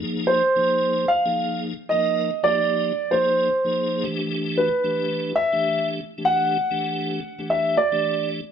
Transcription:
0.02 tonewheel organ F3 A#3 D#4 G#4
0.27 grand piano C5
0.56 tonewheel organ F3 A#3 D#4 G#4
1.08 grand piano F5
1.26 tonewheel organ F3 A#3 D#4 G#4
1.89 tonewheel organ F3 A#3 D#4 A#4, grand piano D#5
2.43 tonewheel organ F3 A#3 D#4 G4, grand piano D5
3.11 tonewheel organ F3 A#3 D#4 G#4, grand piano C5
3.65 tonewheel organ F3 A#3 D#4 G#4
4.04 tonewheel organ E3 A3 D4 G4
4.58 grand piano B4
4.84 tonewheel organ E3 A3 D4 G4
5.36 grand piano E5
5.52 tonewheel organ E3 A3 D4 G4
6.18 tonewheel organ E3 A3 D4 G4
6.25 grand piano F#5
6.71 tonewheel organ E3 A3 D4 G4
7.38 tonewheel organ E3 A3 D4 G4
7.50 grand piano E5
7.77 grand piano D5
7.92 tonewheel organ E3 A3 D4 G4

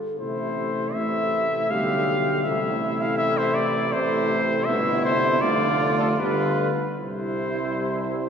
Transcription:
Already playing: french horn A4
0.19 bass trombone A1, trombone C3, french horn A3, trumpet E4, cornet C5
0.94 trombone C3, french horn A3, trumpet E4, cornet E5
1.70 bass trombone B1, trombone D3, french horn G3, trumpet G4, cornet F5
2.44 bass trombone A1, trombone C3, french horn A3, trumpet E4, cornet E5
3.01 cornet F5
3.18 cornet E5
3.38 cornet C5
3.55 cornet D5
3.92 trombone C3, french horn A3, trumpet E4, cornet C5
4.66 bass trombone G1, trombone B2, french horn B3, trumpet E4, cornet E5
5.05 trombone C3, cornet C5
5.41 bass trombone F1, trombone D3, french horn A3, trumpet F4, cornet D5
5.99 cornet A4
6.19 bass trombone G1, trombone D3, french horn G3, trumpet F4, cornet B4
6.98 bass trombone C2, trombone C3, french horn G3, trumpet E4, cornet C5

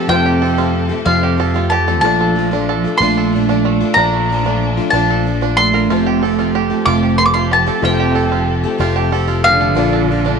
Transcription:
Already playing: upright piano F1 F2 F3 A3 G4 C5, string section F3 C4 G4 A4, five-string banjo G4 A4
0.08 upright piano F1 F2 F3 A3 G4 C5, fingered electric bass F2, steel-string acoustic guitar F2 C3 F3 A3 C4 G4, cello C3, five-string banjo F4, mandolin G5
0.26 five-string banjo G4
0.42 steel-string acoustic guitar F3 A3 C4 G4, five-string banjo A4
0.58 steel-string acoustic guitar F3 A3 C4 G4, five-string banjo F4
0.89 steel-string acoustic guitar F3 A3 C4 G4
1.04 steel-string acoustic guitar F2 C3 F3 A3 C4 G4, fingered electric bass F2, cello C3, five-string banjo F4, mandolin F5
1.23 five-string banjo G4
1.38 steel-string acoustic guitar F3 A3 C4 G4, five-string banjo A4
1.54 steel-string acoustic guitar F3 A3 C4 G4, five-string banjo F4
1.69 cello F3, five-string banjo G4, mandolin A5
1.87 steel-string acoustic guitar F3 A3 C4 G4, five-string banjo A4
2.01 upright piano A#1 A#2 F3 A3 A4, fingered electric bass A#1, steel-string acoustic guitar A#2 F3 A3, string section A#2 D4, cello F3, five-string banjo D4, mandolin A5
2.05 steel-string acoustic guitar D4 F4, upright piano D5
2.21 five-string banjo A4
2.36 steel-string acoustic guitar F3 A3 D4 F4
2.51 steel-string acoustic guitar A3 D4 F4, five-string banjo D4
2.69 five-string banjo A4
2.84 steel-string acoustic guitar A3 D4 F4
2.97 fingered electric bass A#1, steel-string acoustic guitar A#2 F3, cello A3, five-string banjo D4, mandolin C6
3.02 steel-string acoustic guitar A3 D4 F4
3.17 five-string banjo A4
3.33 steel-string acoustic guitar F3 A3 D4 F4
3.49 steel-string acoustic guitar A3 D4 F4, five-string banjo D4
3.65 five-string banjo A3
3.81 steel-string acoustic guitar A3 D4 F4
3.94 upright piano A#1 A#2 F3 A3 F4, fingered electric bass A#1, steel-string acoustic guitar A#2 F3 A3, cello F3, five-string banjo D4, mandolin A#5
3.98 steel-string acoustic guitar F4, upright piano D5
4.13 five-string banjo A3
4.29 steel-string acoustic guitar F3 A3 D4 F4
4.44 steel-string acoustic guitar A3 D4 F4, five-string banjo D4
4.77 steel-string acoustic guitar A3 D4 F4
4.90 fingered electric bass A#1, steel-string acoustic guitar A#2 F3 A3, cello F3, five-string banjo D4, mandolin A5
4.95 steel-string acoustic guitar D4 F4
5.10 five-string banjo A4
5.25 steel-string acoustic guitar F3 A3 D4 F4
5.41 steel-string acoustic guitar A3 D4 F4, five-string banjo D4
5.56 cello A3, five-string banjo A4, mandolin C6
5.73 steel-string acoustic guitar A3 D4 F4, five-string banjo A#4
5.89 fingered electric bass F1, upright piano F1 F2 F3 A3 G4 C5, steel-string acoustic guitar F2 C3 F3 A3 C4 G4, string section F3 C4 G4 A4, five-string banjo F4
6.06 five-string banjo G4
6.22 steel-string acoustic guitar F3 A3 C4 G4, five-string banjo A4
6.38 steel-string acoustic guitar F3 A3 C4 G4, five-string banjo F4
6.55 five-string banjo G4
6.70 steel-string acoustic guitar F3 A3 C4 G4
6.86 fingered electric bass F1, steel-string acoustic guitar F2 C3 F3 A3 C4 G4, cello A3, five-string banjo F4, mandolin D6
7.03 five-string banjo G4
7.17 steel-string acoustic guitar F3 A3 C4 G4, cello A3, mandolin C6
7.25 cello A#3, mandolin D6
7.32 cello A3, steel-string acoustic guitar C4 G4, five-string banjo F4, mandolin C6
7.36 steel-string acoustic guitar F3 A3
7.51 cello F3, five-string banjo G4, mandolin A5
7.67 steel-string acoustic guitar F3 A3 C4 G4, five-string banjo A4
7.81 fingered electric bass F1, upright piano F1 F2 F3 A3 G4 C5, steel-string acoustic guitar F2 C3 F3 A3 C4, cello C3, five-string banjo F4, mandolin G5
7.85 steel-string acoustic guitar G4
8.00 five-string banjo G4
8.15 steel-string acoustic guitar F3 A3 C4 G4, five-string banjo A4
8.31 steel-string acoustic guitar F3 A3 C4 G4, five-string banjo F4
8.64 steel-string acoustic guitar F3 A3 C4 G4
8.79 fingered electric bass F1, steel-string acoustic guitar F2 C3 F3 A3 C4 G4, five-string banjo F4
8.96 five-string banjo G4
9.11 steel-string acoustic guitar F3 A3 C4 G4, five-string banjo A4
9.28 steel-string acoustic guitar F3 A3 C4 G4, five-string banjo F4
9.44 cello D3, five-string banjo G4, mandolin F5
9.59 steel-string acoustic guitar F3 A3 C4 G4, five-string banjo A4
9.75 fingered electric bass A#1, upright piano A#1 A#2 F3 A#3 A4, steel-string acoustic guitar A#2 F3 A3 D4 F4, string section A#2 D4, five-string banjo D4
9.79 upright piano D5
9.93 five-string banjo A4
10.08 steel-string acoustic guitar F3 A3 D4 F4
10.24 steel-string acoustic guitar A3 D4 F4, five-string banjo D4

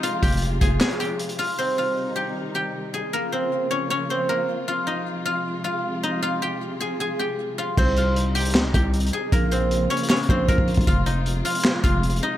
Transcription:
Already playing: string section C3 F3 G#3 F4, guzheng A#3 C4 D#4 A#4 D#5
0.03 guzheng F4 F5, closed hi-hat
0.23 808-style bass F1, guzheng G4 G5, kick, closed hi-hat
0.28 closed hi-hat
0.32 closed hi-hat
0.37 closed hi-hat
0.42 closed hi-hat
0.61 808-style bass F1, guzheng G#4 G#5, kick, closed hi-hat
0.81 guzheng G#4 G#5, snare, clap
0.90 closed hi-hat
1.00 guzheng G4 G5, closed hi-hat
1.19 closed hi-hat
1.29 closed hi-hat
1.39 guzheng F4 F5, open hi-hat
1.58 string section C3 D#3 G3 D#4, guzheng C4 C5
1.78 guzheng F4 F5
2.16 guzheng G4 G5
2.55 guzheng G4 G5
2.94 guzheng G#4 G#5
3.13 string section C#3 F3 A#3 F4, guzheng A#3 A#4
3.32 guzheng C4 C5
3.71 guzheng C#4 C#5
3.90 guzheng C#4 C#5
4.10 guzheng C4 C5
4.29 guzheng A#3 A#4
4.68 string section C3 G#3, guzheng F4 F5
4.87 guzheng D#4 D#5
5.26 guzheng F4 F5
5.64 guzheng F4 F5
6.03 guzheng D#4 D#5
6.23 guzheng F4 F5
6.42 guzheng G4 G5
6.80 guzheng G#4 G#5
7.00 guzheng G#4 G#5
7.19 guzheng G4 G5
7.58 guzheng F4 F5
7.77 808-style bass C2, string section C3 D#3 G3 D#4, guzheng C4 C5, kick, crash
7.97 guzheng F4 F5, closed hi-hat
8.16 closed hi-hat
8.35 guzheng G4 G5, closed hi-hat
8.40 closed hi-hat
8.45 closed hi-hat
8.50 closed hi-hat
8.55 808-style bass C#2, snare, clap
8.65 808-style bass C2
8.74 808-style bass C2, guzheng G4 G5, kick, closed hi-hat
8.94 closed hi-hat
9.00 closed hi-hat
9.07 closed hi-hat
9.13 guzheng G#4 G#5
9.32 808-style bass A#1, string section C#3 F3 A#3 F4, guzheng A#3 A#4, kick, closed hi-hat
9.51 guzheng C4 C5, closed hi-hat
9.71 closed hi-hat
9.90 guzheng C#4 C#5, closed hi-hat
9.97 closed hi-hat
10.03 closed hi-hat
10.10 guzheng C#4 C#5, snare, clap
10.16 closed hi-hat
10.23 closed hi-hat
10.29 808-style bass A#1, guzheng C4 C5, kick
10.48 808-style bass A#1, guzheng A#3 A#4, kick, closed hi-hat
10.58 808-style bass A#1, kick
10.68 closed hi-hat, open hi-hat
10.74 808-style bass A#1, kick, closed hi-hat
10.81 closed hi-hat
10.87 808-style bass F1, string section C3 G#3, guzheng F4 F5, kick, closed hi-hat
11.06 guzheng D#4 D#5, closed hi-hat
11.26 closed hi-hat
11.45 guzheng F4 F5, closed hi-hat
11.50 closed hi-hat
11.55 closed hi-hat
11.60 closed hi-hat
11.65 snare, clap
11.84 808-style bass F1, guzheng F4 F5, kick, closed hi-hat
12.03 closed hi-hat
12.10 closed hi-hat
12.16 closed hi-hat
12.23 guzheng D#4 D#5

